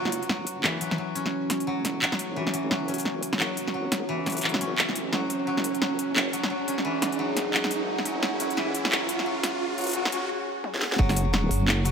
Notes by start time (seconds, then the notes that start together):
Already playing: F#1 F#3 C#4 F#4 C#5, riser
0.05 snare
0.12 closed hi-hat
0.23 closed hi-hat
0.29 F#3, snare
0.46 F#1, closed hi-hat
0.64 E3, clap, snare
0.81 F#3, closed hi-hat
0.91 snare
0.98 F#3
1.15 C#4, closed hi-hat
1.26 snare
1.50 snare, closed hi-hat
1.60 closed hi-hat
1.67 E1 F#3
1.85 snare, closed hi-hat
2.02 F#3, clap
2.12 snare
2.19 G#1, closed hi-hat
2.36 E3
2.47 snare
2.54 F#3, closed hi-hat
2.71 F#1 F#3, snare
2.88 C#4, closed hi-hat
2.94 closed hi-hat
2.98 closed hi-hat
3.05 snare
3.23 F#1, closed hi-hat
3.33 snare
3.40 F#3, clap
3.57 closed hi-hat
3.67 snare
3.74 G#1 F#3
3.92 snare, closed hi-hat
4.09 E3
4.26 F#3, snare, closed hi-hat
4.30 closed hi-hat
4.32 closed hi-hat
4.37 closed hi-hat
4.40 F#3, clap, closed hi-hat
4.49 closed hi-hat
4.54 snare
4.61 C#4, closed hi-hat
4.78 A1, clap
4.89 snare
4.96 closed hi-hat
5.13 F#3, snare
5.30 closed hi-hat
5.47 F#1 F#3 G#4 F#5
5.57 snare
5.64 closed hi-hat
5.75 closed hi-hat
5.82 F#3, snare
5.99 F#1, closed hi-hat
6.16 clap, snare
6.33 F#3, closed hi-hat
6.43 snare
6.50 F#3
6.68 C#4, closed hi-hat
6.78 snare
6.85 E3
7.02 snare, closed hi-hat
7.12 closed hi-hat
7.19 E1 F#3
7.37 snare, closed hi-hat
7.53 F#3, clap
7.64 snare
7.71 G#1, closed hi-hat
7.98 snare
8.05 F#3, closed hi-hat
8.22 F#1 F#3, snare
8.40 C#4, closed hi-hat
8.50 closed hi-hat
8.57 E3, snare
8.74 F#1, closed hi-hat
8.85 snare
8.92 F#3, clap
9.09 closed hi-hat
9.19 snare
9.26 F#3
9.43 snare, closed hi-hat
9.61 F#1
9.78 F#3, closed hi-hat
9.81 closed hi-hat
9.84 closed hi-hat
9.87 closed hi-hat
9.88 closed hi-hat
9.91 closed hi-hat
9.93 F#3, closed hi-hat
10.05 snare
10.12 C#4, closed hi-hat
10.64 high tom
10.74 snare
10.79 snare
10.82 snare
10.92 snare
10.98 F#1 F#3 C#4 F#4 C#5, kick
11.09 snare, open hi-hat
11.16 closed hi-hat
11.33 F#3, snare
11.51 F#1, open hi-hat
11.68 clap, snare
11.85 F#3, closed hi-hat